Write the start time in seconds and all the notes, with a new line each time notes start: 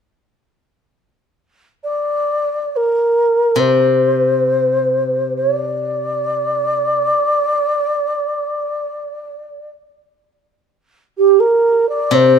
1.84 D5
2.76 A#4
3.56 C3
3.60 C5
5.36 C#5
5.55 D5
11.18 G4
11.40 A#4
11.89 D5
12.11 C3 C5